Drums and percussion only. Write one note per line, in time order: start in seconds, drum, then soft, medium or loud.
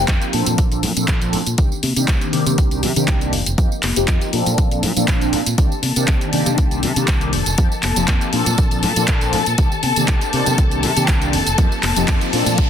0.08 kick loud
0.08 clap loud
0.08 closed hi-hat medium
0.08 tambourine medium
0.22 closed hi-hat soft
0.22 tambourine soft
0.33 open hi-hat medium
0.46 closed hi-hat medium
0.46 tambourine medium
0.46 low conga medium
0.58 kick loud
0.58 closed hi-hat medium
0.58 tambourine soft
0.72 closed hi-hat soft
0.72 tambourine soft
0.83 open hi-hat loud
0.83 tambourine medium
0.83 low conga medium
0.97 closed hi-hat medium
0.97 tambourine medium
1.08 kick loud
1.08 clap loud
1.08 closed hi-hat medium
1.08 tambourine medium
1.22 closed hi-hat soft
1.22 tambourine soft
1.33 open hi-hat loud
1.46 closed hi-hat medium
1.46 tambourine medium
1.58 kick loud
1.58 closed hi-hat medium
1.58 tambourine medium
1.72 tambourine soft
1.83 open hi-hat loud
1.83 tambourine loud
1.83 high conga medium
1.97 closed hi-hat medium
1.97 tambourine soft
1.97 tambourine medium
2.08 kick loud
2.08 clap loud
2.08 closed hi-hat medium
2.08 tambourine medium
2.21 closed hi-hat soft
2.21 tambourine soft
2.33 open hi-hat medium
2.46 closed hi-hat soft
2.46 tambourine medium
2.46 high conga medium
2.46 low conga medium
2.58 kick loud
2.58 closed hi-hat medium
2.58 tambourine medium
2.71 closed hi-hat soft
2.71 tambourine soft
2.83 open hi-hat loud
2.83 tambourine medium
2.83 low conga medium
2.96 closed hi-hat soft
2.96 tambourine medium
3.08 kick loud
3.08 clap loud
3.08 closed hi-hat medium
3.08 tambourine medium
3.21 closed hi-hat soft
3.21 tambourine soft
3.33 open hi-hat loud
3.46 closed hi-hat soft
3.46 tambourine medium
3.58 kick loud
3.58 closed hi-hat medium
3.58 tambourine medium
3.72 tambourine soft
3.82 clap medium
3.82 open hi-hat loud
3.82 tambourine medium
3.82 high conga medium
3.96 closed hi-hat medium
3.96 tambourine soft
3.96 tambourine medium
4.08 kick loud
4.08 clap loud
4.08 closed hi-hat medium
4.08 tambourine medium
4.21 closed hi-hat soft
4.21 tambourine soft
4.33 open hi-hat medium
4.33 tambourine medium
4.46 closed hi-hat soft
4.46 tambourine soft
4.46 tambourine medium
4.46 low conga medium
4.58 kick loud
4.58 closed hi-hat medium
4.58 tambourine soft
4.58 tambourine medium
4.58 low conga medium
4.71 closed hi-hat soft
4.71 tambourine soft
4.82 open hi-hat loud
4.82 tambourine medium
4.82 low conga medium
4.97 closed hi-hat soft
4.97 tambourine soft
4.97 tambourine medium
5.08 kick loud
5.08 clap loud
5.08 closed hi-hat medium
5.08 tambourine medium
5.21 closed hi-hat soft
5.21 tambourine soft
5.33 open hi-hat loud
5.46 closed hi-hat soft
5.46 tambourine medium
5.58 kick loud
5.58 closed hi-hat medium
5.58 tambourine medium
5.72 tambourine soft
5.82 open hi-hat loud
5.82 tambourine medium
5.82 high conga medium
5.96 closed hi-hat medium
5.96 tambourine soft
5.96 tambourine medium
6.08 kick loud
6.08 clap loud
6.08 closed hi-hat medium
6.21 closed hi-hat soft
6.21 tambourine soft
6.32 open hi-hat medium
6.32 tambourine medium
6.46 closed hi-hat soft
6.46 tambourine medium
6.46 high conga medium
6.46 low conga medium
6.58 kick loud
6.58 closed hi-hat medium
6.58 tambourine medium
6.71 closed hi-hat soft
6.71 tambourine soft
6.83 open hi-hat loud
6.83 tambourine medium
6.83 low conga medium
6.96 closed hi-hat medium
6.96 tambourine medium
7.08 kick loud
7.08 clap loud
7.08 closed hi-hat medium
7.08 tambourine medium
7.21 closed hi-hat soft
7.21 tambourine soft
7.33 open hi-hat medium
7.33 tambourine medium
7.46 closed hi-hat soft
7.46 tambourine medium
7.46 tambourine soft
7.58 kick loud
7.58 closed hi-hat medium
7.58 tambourine medium
7.72 tambourine soft
7.83 clap medium
7.83 open hi-hat loud
7.83 tambourine loud
7.83 high conga medium
7.96 closed hi-hat medium
7.96 tambourine medium
8.08 kick loud
8.08 clap loud
8.08 closed hi-hat medium
8.08 tambourine medium
8.21 closed hi-hat soft
8.21 tambourine soft
8.33 open hi-hat medium
8.33 tambourine medium
8.46 closed hi-hat soft
8.46 tambourine medium
8.46 tambourine soft
8.46 low conga medium
8.58 kick loud
8.58 closed hi-hat medium
8.58 tambourine medium
8.58 tambourine soft
8.71 closed hi-hat soft
8.71 tambourine soft
8.83 open hi-hat loud
8.83 tambourine medium
8.83 low conga medium
8.96 closed hi-hat medium
8.96 tambourine medium
9.08 kick loud
9.08 clap loud
9.08 closed hi-hat medium
9.08 tambourine medium
9.21 closed hi-hat soft
9.21 tambourine soft
9.33 open hi-hat medium
9.33 tambourine medium
9.46 closed hi-hat medium
9.46 tambourine medium
9.58 kick loud
9.58 closed hi-hat medium
9.58 tambourine medium
9.58 tambourine soft
9.72 tambourine soft
9.83 open hi-hat loud
9.83 tambourine medium
9.83 high conga medium
9.96 closed hi-hat medium
9.96 tambourine medium
10.08 kick loud
10.08 clap loud
10.08 closed hi-hat medium
10.08 tambourine medium
10.21 closed hi-hat soft
10.21 tambourine soft
10.33 open hi-hat medium
10.33 tambourine loud
10.46 closed hi-hat medium
10.46 tambourine medium
10.46 high conga medium
10.46 low conga medium
10.58 kick loud
10.58 closed hi-hat medium
10.58 tambourine soft
10.58 tambourine medium
10.71 closed hi-hat soft
10.71 tambourine soft
10.83 open hi-hat loud
10.83 tambourine medium
10.83 low conga medium
10.97 closed hi-hat medium
10.97 tambourine medium
11.08 kick loud
11.08 clap loud
11.08 closed hi-hat medium
11.08 tambourine medium
11.08 tambourine soft
11.22 closed hi-hat soft
11.22 tambourine soft
11.33 open hi-hat medium
11.33 tambourine loud
11.46 closed hi-hat medium
11.46 tambourine soft
11.46 tambourine medium
11.58 kick loud
11.58 closed hi-hat medium
11.58 tambourine medium
11.72 tambourine soft
11.83 clap medium
11.83 open hi-hat loud
11.83 tambourine loud
11.83 high conga medium
11.96 closed hi-hat medium
11.96 tambourine medium
12.08 kick loud
12.08 clap loud
12.08 closed hi-hat medium
12.08 tambourine medium
12.21 closed hi-hat soft
12.21 tambourine soft
12.33 open hi-hat medium
12.33 tambourine medium
12.46 closed hi-hat medium
12.46 tambourine medium
12.46 high conga medium
12.46 low conga medium
12.58 kick loud
12.58 closed hi-hat medium
12.58 tambourine soft
12.58 tambourine medium
12.58 low conga medium